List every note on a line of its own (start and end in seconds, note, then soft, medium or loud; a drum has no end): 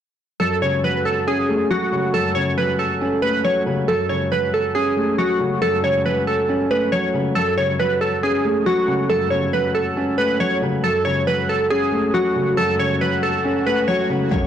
0.40 1.49 F#2 medium
0.40 0.58 A4 medium
0.62 1.70 C#3 medium
0.62 0.80 C#5 medium
0.84 1.69 F#3 medium
0.84 1.02 B4 medium
1.05 1.23 A4 medium
1.27 2.36 C#4 medium
1.27 1.68 G#4 medium
1.49 2.58 A3 medium
1.70 2.56 F#3 medium
1.70 2.11 F#4 loud
1.92 2.34 C#3 medium
2.14 3.23 F#2 medium
2.14 2.32 A4 loud
2.35 3.45 C#3 medium
2.35 2.53 C#5 medium
2.58 3.43 F#3 medium
2.58 2.76 B4 medium
2.79 3.20 A4 medium
3.01 3.88 C#4 medium
3.22 3.88 A3 medium
3.22 3.40 B4 medium
3.44 3.88 F#3 medium
3.44 3.62 C#5 medium
3.66 3.88 C#3 medium
3.88 4.97 F#2 medium
3.88 4.06 A4 loud
4.09 5.18 C#3 medium
4.09 4.27 C#5 medium
4.31 5.17 F#3 medium
4.31 4.50 B4 medium
4.54 4.71 A4 medium
4.75 5.84 C#4 medium
4.75 5.16 G#4 medium
4.97 6.05 A3 medium
5.18 6.04 F#3 medium
5.18 5.59 F#4 medium
5.40 5.82 C#3 medium
5.62 6.71 F#2 medium
5.62 5.80 A4 loud
5.84 6.92 C#3 medium
5.84 6.02 C#5 medium
6.05 6.91 F#3 medium
6.05 6.23 B4 medium
6.27 6.68 A4 medium
6.49 7.36 C#4 medium
6.70 7.36 A3 medium
6.70 6.89 B4 medium
6.92 7.36 F#3 loud
6.92 7.10 C#5 medium
7.14 7.36 C#3 medium
7.35 8.44 F#2 medium
7.35 7.53 A4 medium
7.57 8.66 C#3 medium
7.57 7.75 C#5 medium
7.79 8.65 F#3 medium
7.79 7.97 B4 medium
8.01 8.19 A4 medium
8.23 9.31 C#4 medium
8.23 8.64 G#4 medium
8.45 9.53 A3 medium
8.66 9.52 F#3 loud
8.66 9.07 F#4 loud
8.88 9.30 C#3 medium
9.10 10.18 F#2 medium
9.10 9.28 A4 loud
9.30 10.40 C#3 medium
9.30 9.49 C#5 medium
9.53 10.39 F#3 medium
9.53 9.71 B4 medium
9.75 10.16 A4 medium
9.97 10.84 C#4 medium
10.18 10.84 A3 medium
10.18 10.36 B4 medium
10.40 10.84 F#3 medium
10.40 10.58 C#5 medium
10.62 10.84 C#3 medium
10.84 11.92 F#2 medium
10.84 11.02 A4 loud
11.05 12.14 C#3 medium
11.05 11.23 C#5 medium
11.27 12.13 F#3 medium
11.27 11.45 B4 medium
11.49 11.67 A4 medium
11.70 12.79 C#4 medium
11.70 12.11 G#4 medium
11.92 13.01 A3 medium
12.14 13.00 F#3 medium
12.14 12.55 F#4 medium
12.36 12.78 C#3 medium
12.57 13.66 F#2 medium
12.57 12.75 A4 loud
12.57 swell medium
12.79 13.88 C#3 medium
12.79 12.97 C#5 medium
13.01 13.86 F#3 medium
13.01 13.19 B4 medium
13.23 13.64 A4 medium
13.45 14.31 C#4 medium
13.66 14.31 A3 medium
13.66 13.84 B4 medium
13.88 14.31 F#3 loud
13.88 14.06 C#5 medium
14.10 14.31 C#3 medium
14.31 14.47 F#2 medium
14.31 14.47 C#4 medium
14.31 14.47 A4 medium
14.31 14.47 F#5 medium
14.31 cajon slap soft
14.31 impact medium